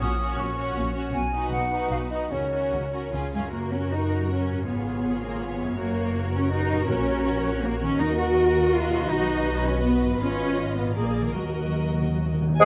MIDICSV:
0, 0, Header, 1, 12, 480
1, 0, Start_track
1, 0, Key_signature, 6, "major"
1, 0, Tempo, 377358
1, 8, Time_signature, 3, 2, 24, 8
1, 1928, Tempo, 404040
1, 4328, Tempo, 379267
1, 5768, Tempo, 367197
1, 10102, Key_signature, -6, "minor"
1, 11528, Tempo, 376884
1, 13448, Tempo, 403226
1, 15903, End_track
2, 0, Start_track
2, 0, Title_t, "Flute"
2, 0, Program_c, 0, 73
2, 10, Note_on_c, 0, 87, 55
2, 508, Note_on_c, 0, 85, 57
2, 527, Note_off_c, 0, 87, 0
2, 1147, Note_off_c, 0, 85, 0
2, 1455, Note_on_c, 0, 80, 59
2, 1900, Note_off_c, 0, 80, 0
2, 1925, Note_on_c, 0, 78, 57
2, 2387, Note_off_c, 0, 78, 0
2, 2399, Note_on_c, 0, 77, 53
2, 2470, Note_off_c, 0, 77, 0
2, 2630, Note_on_c, 0, 75, 48
2, 2880, Note_on_c, 0, 73, 44
2, 2898, Note_off_c, 0, 75, 0
2, 3853, Note_off_c, 0, 73, 0
2, 15842, Note_on_c, 0, 80, 55
2, 15903, Note_off_c, 0, 80, 0
2, 15903, End_track
3, 0, Start_track
3, 0, Title_t, "Violin section"
3, 0, Program_c, 1, 48
3, 0, Note_on_c, 1, 73, 33
3, 237, Note_off_c, 1, 73, 0
3, 265, Note_on_c, 1, 73, 37
3, 720, Note_off_c, 1, 73, 0
3, 735, Note_on_c, 1, 73, 45
3, 1197, Note_off_c, 1, 73, 0
3, 1217, Note_on_c, 1, 73, 37
3, 1443, Note_off_c, 1, 73, 0
3, 1688, Note_on_c, 1, 71, 37
3, 2155, Note_off_c, 1, 71, 0
3, 2176, Note_on_c, 1, 71, 39
3, 2633, Note_off_c, 1, 71, 0
3, 2656, Note_on_c, 1, 71, 32
3, 2881, Note_off_c, 1, 71, 0
3, 2891, Note_on_c, 1, 70, 31
3, 3114, Note_off_c, 1, 70, 0
3, 3128, Note_on_c, 1, 70, 32
3, 3603, Note_off_c, 1, 70, 0
3, 3628, Note_on_c, 1, 70, 34
3, 3856, Note_off_c, 1, 70, 0
3, 3859, Note_on_c, 1, 68, 33
3, 4087, Note_off_c, 1, 68, 0
3, 4102, Note_on_c, 1, 68, 31
3, 4322, Note_on_c, 1, 70, 35
3, 4327, Note_off_c, 1, 68, 0
3, 5714, Note_off_c, 1, 70, 0
3, 5778, Note_on_c, 1, 73, 41
3, 8613, Note_off_c, 1, 73, 0
3, 8639, Note_on_c, 1, 73, 48
3, 10038, Note_off_c, 1, 73, 0
3, 10104, Note_on_c, 1, 75, 51
3, 12915, Note_off_c, 1, 75, 0
3, 12953, Note_on_c, 1, 75, 49
3, 13858, Note_off_c, 1, 75, 0
3, 13894, Note_on_c, 1, 74, 41
3, 14349, Note_off_c, 1, 74, 0
3, 14378, Note_on_c, 1, 75, 37
3, 15553, Note_off_c, 1, 75, 0
3, 15829, Note_on_c, 1, 80, 77
3, 15903, Note_off_c, 1, 80, 0
3, 15903, End_track
4, 0, Start_track
4, 0, Title_t, "Clarinet"
4, 0, Program_c, 2, 71
4, 15854, Note_on_c, 2, 68, 75
4, 15903, Note_off_c, 2, 68, 0
4, 15903, End_track
5, 0, Start_track
5, 0, Title_t, "Oboe"
5, 0, Program_c, 3, 68
5, 15857, Note_on_c, 3, 68, 70
5, 15903, Note_off_c, 3, 68, 0
5, 15903, End_track
6, 0, Start_track
6, 0, Title_t, "Violin section"
6, 0, Program_c, 4, 48
6, 5, Note_on_c, 4, 66, 36
6, 242, Note_off_c, 4, 66, 0
6, 265, Note_on_c, 4, 66, 40
6, 711, Note_off_c, 4, 66, 0
6, 727, Note_on_c, 4, 66, 38
6, 1193, Note_off_c, 4, 66, 0
6, 1225, Note_on_c, 4, 66, 36
6, 1448, Note_off_c, 4, 66, 0
6, 1698, Note_on_c, 4, 66, 40
6, 2159, Note_off_c, 4, 66, 0
6, 2172, Note_on_c, 4, 66, 38
6, 2616, Note_off_c, 4, 66, 0
6, 2630, Note_on_c, 4, 66, 34
6, 2851, Note_off_c, 4, 66, 0
6, 2865, Note_on_c, 4, 66, 32
6, 3100, Note_off_c, 4, 66, 0
6, 3115, Note_on_c, 4, 66, 34
6, 3596, Note_off_c, 4, 66, 0
6, 3616, Note_on_c, 4, 66, 30
6, 3847, Note_on_c, 4, 65, 33
6, 3850, Note_off_c, 4, 66, 0
6, 4081, Note_off_c, 4, 65, 0
6, 4096, Note_on_c, 4, 65, 33
6, 4310, Note_on_c, 4, 70, 34
6, 4324, Note_off_c, 4, 65, 0
6, 5707, Note_off_c, 4, 70, 0
6, 5778, Note_on_c, 4, 68, 36
6, 7179, Note_off_c, 4, 68, 0
6, 7241, Note_on_c, 4, 70, 47
6, 10057, Note_off_c, 4, 70, 0
6, 10091, Note_on_c, 4, 70, 53
6, 11471, Note_off_c, 4, 70, 0
6, 11518, Note_on_c, 4, 71, 52
6, 13858, Note_off_c, 4, 71, 0
6, 13900, Note_on_c, 4, 70, 44
6, 15555, Note_off_c, 4, 70, 0
6, 15866, Note_on_c, 4, 68, 66
6, 15903, Note_off_c, 4, 68, 0
6, 15903, End_track
7, 0, Start_track
7, 0, Title_t, "Harp"
7, 0, Program_c, 5, 46
7, 0, Note_on_c, 5, 61, 37
7, 0, Note_on_c, 5, 73, 41
7, 2, Note_on_c, 5, 46, 45
7, 220, Note_off_c, 5, 61, 0
7, 235, Note_on_c, 5, 61, 37
7, 483, Note_on_c, 5, 66, 37
7, 701, Note_off_c, 5, 73, 0
7, 716, Note_on_c, 5, 73, 33
7, 941, Note_off_c, 5, 66, 0
7, 956, Note_on_c, 5, 66, 36
7, 1179, Note_off_c, 5, 61, 0
7, 1195, Note_on_c, 5, 61, 36
7, 1430, Note_on_c, 5, 47, 39
7, 1454, Note_off_c, 5, 73, 0
7, 1456, Note_off_c, 5, 61, 0
7, 1457, Note_off_c, 5, 46, 0
7, 1687, Note_on_c, 5, 63, 34
7, 1911, Note_off_c, 5, 66, 0
7, 1926, Note_on_c, 5, 66, 38
7, 2162, Note_on_c, 5, 71, 35
7, 2385, Note_off_c, 5, 66, 0
7, 2399, Note_on_c, 5, 66, 28
7, 2620, Note_off_c, 5, 63, 0
7, 2634, Note_on_c, 5, 63, 32
7, 2883, Note_on_c, 5, 49, 37
7, 2890, Note_off_c, 5, 47, 0
7, 2895, Note_off_c, 5, 63, 0
7, 2896, Note_off_c, 5, 71, 0
7, 3123, Note_on_c, 5, 61, 30
7, 3350, Note_off_c, 5, 66, 0
7, 3364, Note_on_c, 5, 66, 32
7, 3608, Note_on_c, 5, 70, 33
7, 3829, Note_off_c, 5, 49, 0
7, 3844, Note_on_c, 5, 49, 32
7, 3870, Note_off_c, 5, 66, 0
7, 3870, Note_off_c, 5, 70, 0
7, 4098, Note_on_c, 5, 65, 27
7, 4102, Note_on_c, 5, 68, 28
7, 4110, Note_on_c, 5, 42, 29
7, 4149, Note_off_c, 5, 61, 0
7, 4163, Note_on_c, 5, 61, 27
7, 4216, Note_on_c, 5, 66, 24
7, 4271, Note_on_c, 5, 70, 25
7, 4342, Note_off_c, 5, 49, 0
7, 4348, Note_off_c, 5, 65, 0
7, 4351, Note_off_c, 5, 68, 0
7, 5539, Note_on_c, 5, 44, 32
7, 5583, Note_off_c, 5, 61, 0
7, 5598, Note_on_c, 5, 61, 29
7, 5651, Note_on_c, 5, 65, 25
7, 5671, Note_off_c, 5, 42, 0
7, 5709, Note_on_c, 5, 68, 26
7, 5727, Note_off_c, 5, 66, 0
7, 5756, Note_off_c, 5, 70, 0
7, 6976, Note_on_c, 5, 42, 43
7, 7021, Note_off_c, 5, 61, 0
7, 7036, Note_on_c, 5, 61, 32
7, 7096, Note_on_c, 5, 66, 31
7, 7127, Note_off_c, 5, 44, 0
7, 7158, Note_on_c, 5, 70, 30
7, 7185, Note_off_c, 5, 65, 0
7, 7215, Note_off_c, 5, 68, 0
7, 8423, Note_on_c, 5, 46, 44
7, 8463, Note_off_c, 5, 61, 0
7, 8478, Note_on_c, 5, 61, 35
7, 8521, Note_off_c, 5, 66, 0
7, 8537, Note_on_c, 5, 66, 36
7, 8555, Note_off_c, 5, 42, 0
7, 8584, Note_off_c, 5, 70, 0
7, 8600, Note_on_c, 5, 70, 37
7, 9860, Note_on_c, 5, 51, 40
7, 9915, Note_on_c, 5, 63, 36
7, 9963, Note_off_c, 5, 66, 0
7, 9978, Note_on_c, 5, 66, 39
7, 10002, Note_off_c, 5, 46, 0
7, 10022, Note_off_c, 5, 70, 0
7, 10029, Note_off_c, 5, 61, 0
7, 10038, Note_on_c, 5, 70, 41
7, 11280, Note_on_c, 5, 47, 45
7, 11325, Note_off_c, 5, 63, 0
7, 11341, Note_on_c, 5, 63, 38
7, 11380, Note_off_c, 5, 66, 0
7, 11396, Note_on_c, 5, 66, 38
7, 11427, Note_off_c, 5, 51, 0
7, 11455, Note_on_c, 5, 71, 38
7, 11516, Note_off_c, 5, 70, 0
7, 12719, Note_on_c, 5, 44, 37
7, 12761, Note_off_c, 5, 63, 0
7, 12776, Note_on_c, 5, 63, 34
7, 12837, Note_on_c, 5, 65, 33
7, 12862, Note_off_c, 5, 47, 0
7, 12875, Note_off_c, 5, 71, 0
7, 12891, Note_on_c, 5, 71, 35
7, 12919, Note_off_c, 5, 66, 0
7, 13688, Note_on_c, 5, 46, 35
7, 13737, Note_on_c, 5, 62, 33
7, 13796, Note_on_c, 5, 68, 31
7, 13815, Note_off_c, 5, 44, 0
7, 13842, Note_off_c, 5, 63, 0
7, 13848, Note_on_c, 5, 70, 27
7, 13895, Note_off_c, 5, 71, 0
7, 14163, Note_on_c, 5, 51, 31
7, 14216, Note_on_c, 5, 63, 27
7, 14269, Note_on_c, 5, 66, 26
7, 14300, Note_off_c, 5, 46, 0
7, 14305, Note_off_c, 5, 70, 0
7, 14319, Note_on_c, 5, 70, 31
7, 14324, Note_off_c, 5, 62, 0
7, 14352, Note_off_c, 5, 65, 0
7, 14354, Note_off_c, 5, 68, 0
7, 15753, Note_off_c, 5, 51, 0
7, 15840, Note_on_c, 5, 51, 51
7, 15903, Note_off_c, 5, 51, 0
7, 15903, Note_off_c, 5, 63, 0
7, 15903, Note_off_c, 5, 66, 0
7, 15903, Note_off_c, 5, 70, 0
7, 15903, End_track
8, 0, Start_track
8, 0, Title_t, "Viola section"
8, 0, Program_c, 6, 48
8, 6, Note_on_c, 6, 61, 38
8, 243, Note_off_c, 6, 61, 0
8, 264, Note_on_c, 6, 61, 40
8, 721, Note_off_c, 6, 61, 0
8, 736, Note_on_c, 6, 61, 37
8, 1197, Note_off_c, 6, 61, 0
8, 1210, Note_on_c, 6, 61, 35
8, 1440, Note_off_c, 6, 61, 0
8, 1686, Note_on_c, 6, 63, 38
8, 2154, Note_off_c, 6, 63, 0
8, 2166, Note_on_c, 6, 63, 35
8, 2618, Note_off_c, 6, 63, 0
8, 2632, Note_on_c, 6, 63, 34
8, 2869, Note_off_c, 6, 63, 0
8, 2878, Note_on_c, 6, 61, 36
8, 3105, Note_off_c, 6, 61, 0
8, 3119, Note_on_c, 6, 61, 35
8, 3585, Note_off_c, 6, 61, 0
8, 3599, Note_on_c, 6, 61, 32
8, 3841, Note_off_c, 6, 61, 0
8, 3853, Note_on_c, 6, 61, 33
8, 4079, Note_off_c, 6, 61, 0
8, 4093, Note_on_c, 6, 61, 31
8, 4321, Note_on_c, 6, 66, 39
8, 4323, Note_off_c, 6, 61, 0
8, 5713, Note_off_c, 6, 66, 0
8, 5764, Note_on_c, 6, 65, 38
8, 7172, Note_off_c, 6, 65, 0
8, 7228, Note_on_c, 6, 66, 49
8, 10050, Note_off_c, 6, 66, 0
8, 10093, Note_on_c, 6, 66, 61
8, 12909, Note_off_c, 6, 66, 0
8, 12966, Note_on_c, 6, 65, 52
8, 13864, Note_off_c, 6, 65, 0
8, 13917, Note_on_c, 6, 68, 43
8, 14361, Note_off_c, 6, 68, 0
8, 14389, Note_on_c, 6, 66, 39
8, 15559, Note_off_c, 6, 66, 0
8, 15851, Note_on_c, 6, 56, 69
8, 15903, Note_off_c, 6, 56, 0
8, 15903, End_track
9, 0, Start_track
9, 0, Title_t, "Cello section"
9, 0, Program_c, 7, 48
9, 17, Note_on_c, 7, 46, 54
9, 416, Note_off_c, 7, 46, 0
9, 504, Note_on_c, 7, 46, 52
9, 895, Note_off_c, 7, 46, 0
9, 984, Note_on_c, 7, 46, 53
9, 1374, Note_off_c, 7, 46, 0
9, 1454, Note_on_c, 7, 47, 59
9, 1854, Note_off_c, 7, 47, 0
9, 1941, Note_on_c, 7, 47, 47
9, 2327, Note_off_c, 7, 47, 0
9, 2414, Note_on_c, 7, 47, 45
9, 2806, Note_off_c, 7, 47, 0
9, 2879, Note_on_c, 7, 49, 42
9, 3287, Note_off_c, 7, 49, 0
9, 3371, Note_on_c, 7, 49, 43
9, 3775, Note_off_c, 7, 49, 0
9, 3845, Note_on_c, 7, 49, 45
9, 4073, Note_off_c, 7, 49, 0
9, 4087, Note_on_c, 7, 56, 46
9, 4181, Note_off_c, 7, 56, 0
9, 4317, Note_on_c, 7, 58, 51
9, 4558, Note_off_c, 7, 58, 0
9, 4558, Note_on_c, 7, 61, 49
9, 4802, Note_on_c, 7, 63, 47
9, 4805, Note_off_c, 7, 61, 0
9, 5285, Note_off_c, 7, 63, 0
9, 5291, Note_on_c, 7, 61, 53
9, 5758, Note_off_c, 7, 61, 0
9, 5761, Note_on_c, 7, 59, 54
9, 6485, Note_off_c, 7, 59, 0
9, 6500, Note_on_c, 7, 58, 50
9, 6739, Note_off_c, 7, 58, 0
9, 6743, Note_on_c, 7, 59, 57
9, 7221, Note_on_c, 7, 58, 62
9, 7224, Note_off_c, 7, 59, 0
9, 7926, Note_off_c, 7, 58, 0
9, 7938, Note_on_c, 7, 61, 59
9, 8167, Note_on_c, 7, 63, 70
9, 8172, Note_off_c, 7, 61, 0
9, 8644, Note_off_c, 7, 63, 0
9, 8650, Note_on_c, 7, 61, 76
9, 9600, Note_off_c, 7, 61, 0
9, 9619, Note_on_c, 7, 58, 73
9, 9859, Note_on_c, 7, 61, 73
9, 9860, Note_off_c, 7, 58, 0
9, 10095, Note_off_c, 7, 61, 0
9, 10101, Note_on_c, 7, 63, 77
9, 10338, Note_off_c, 7, 63, 0
9, 10341, Note_on_c, 7, 66, 68
9, 11034, Note_off_c, 7, 66, 0
9, 11044, Note_on_c, 7, 65, 72
9, 11526, Note_on_c, 7, 63, 75
9, 11527, Note_off_c, 7, 65, 0
9, 12235, Note_on_c, 7, 61, 64
9, 12245, Note_off_c, 7, 63, 0
9, 12479, Note_on_c, 7, 59, 59
9, 12480, Note_off_c, 7, 61, 0
9, 12717, Note_off_c, 7, 59, 0
9, 12941, Note_on_c, 7, 61, 78
9, 13620, Note_off_c, 7, 61, 0
9, 13670, Note_on_c, 7, 59, 61
9, 13906, Note_off_c, 7, 59, 0
9, 13911, Note_on_c, 7, 58, 57
9, 14382, Note_off_c, 7, 58, 0
9, 14388, Note_on_c, 7, 54, 50
9, 15364, Note_off_c, 7, 54, 0
9, 15852, Note_on_c, 7, 44, 66
9, 15903, Note_off_c, 7, 44, 0
9, 15903, End_track
10, 0, Start_track
10, 0, Title_t, "Bassoon"
10, 0, Program_c, 8, 70
10, 15844, Note_on_c, 8, 56, 62
10, 15903, Note_off_c, 8, 56, 0
10, 15903, End_track
11, 0, Start_track
11, 0, Title_t, "Timpani"
11, 0, Program_c, 10, 47
11, 8667, Note_on_c, 10, 46, 51
11, 9338, Note_off_c, 10, 46, 0
11, 10107, Note_on_c, 10, 51, 53
11, 10761, Note_off_c, 10, 51, 0
11, 14391, Note_on_c, 10, 51, 25
11, 14462, Note_off_c, 10, 51, 0
11, 14476, Note_on_c, 10, 51, 24
11, 14557, Note_off_c, 10, 51, 0
11, 14571, Note_on_c, 10, 51, 30
11, 14644, Note_off_c, 10, 51, 0
11, 14658, Note_on_c, 10, 51, 30
11, 14743, Note_off_c, 10, 51, 0
11, 14758, Note_on_c, 10, 51, 31
11, 14834, Note_off_c, 10, 51, 0
11, 14848, Note_on_c, 10, 51, 32
11, 14929, Note_off_c, 10, 51, 0
11, 14943, Note_on_c, 10, 51, 36
11, 15032, Note_off_c, 10, 51, 0
11, 15046, Note_on_c, 10, 51, 39
11, 15132, Note_off_c, 10, 51, 0
11, 15148, Note_on_c, 10, 51, 45
11, 15223, Note_off_c, 10, 51, 0
11, 15237, Note_on_c, 10, 51, 47
11, 15315, Note_off_c, 10, 51, 0
11, 15329, Note_on_c, 10, 51, 52
11, 15407, Note_off_c, 10, 51, 0
11, 15421, Note_on_c, 10, 51, 54
11, 15505, Note_off_c, 10, 51, 0
11, 15520, Note_on_c, 10, 51, 56
11, 15601, Note_off_c, 10, 51, 0
11, 15619, Note_on_c, 10, 51, 67
11, 15689, Note_off_c, 10, 51, 0
11, 15703, Note_on_c, 10, 51, 70
11, 15784, Note_off_c, 10, 51, 0
11, 15903, End_track
12, 0, Start_track
12, 0, Title_t, "Double bass section"
12, 0, Program_c, 11, 48
12, 11, Note_on_c, 11, 34, 52
12, 412, Note_off_c, 11, 34, 0
12, 491, Note_on_c, 11, 34, 54
12, 888, Note_off_c, 11, 34, 0
12, 966, Note_on_c, 11, 34, 54
12, 1364, Note_off_c, 11, 34, 0
12, 1443, Note_on_c, 11, 35, 53
12, 1848, Note_off_c, 11, 35, 0
12, 1928, Note_on_c, 11, 35, 49
12, 2321, Note_off_c, 11, 35, 0
12, 2397, Note_on_c, 11, 35, 44
12, 2796, Note_off_c, 11, 35, 0
12, 2871, Note_on_c, 11, 37, 42
12, 3283, Note_off_c, 11, 37, 0
12, 3363, Note_on_c, 11, 37, 40
12, 3770, Note_off_c, 11, 37, 0
12, 3844, Note_on_c, 11, 37, 44
12, 4248, Note_off_c, 11, 37, 0
12, 4321, Note_on_c, 11, 42, 35
12, 5713, Note_off_c, 11, 42, 0
12, 5759, Note_on_c, 11, 32, 42
12, 7219, Note_on_c, 11, 30, 47
12, 7221, Note_off_c, 11, 32, 0
12, 8628, Note_off_c, 11, 30, 0
12, 8657, Note_on_c, 11, 34, 51
12, 10094, Note_on_c, 11, 39, 54
12, 10100, Note_off_c, 11, 34, 0
12, 11496, Note_off_c, 11, 39, 0
12, 11527, Note_on_c, 11, 35, 50
12, 12961, Note_on_c, 11, 32, 47
12, 12963, Note_off_c, 11, 35, 0
12, 13891, Note_off_c, 11, 32, 0
12, 13909, Note_on_c, 11, 34, 44
12, 14383, Note_on_c, 11, 39, 41
12, 14390, Note_off_c, 11, 34, 0
12, 15579, Note_off_c, 11, 39, 0
12, 15841, Note_on_c, 11, 32, 61
12, 15903, Note_off_c, 11, 32, 0
12, 15903, End_track
0, 0, End_of_file